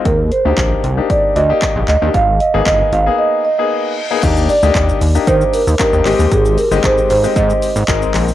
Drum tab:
CC |----------------|----------------|x---------------|----------------|
HH |x-x-x-x-x-x-x-x-|x-x-x-x---------|x-o-x-o-x-o-x-o-|x-o-x-o-x-o-x-o-|
SH |----------------|----------------|xxxxxxxxxxxxxxxx|xxxxxxxxxxxxxxxx|
CP |----x-------x-x-|----x-----------|----x-------x-x-|----x-------x-x-|
BD |o---o---o---o---|o---o-----------|o---o---o---o---|o---o---o---o---|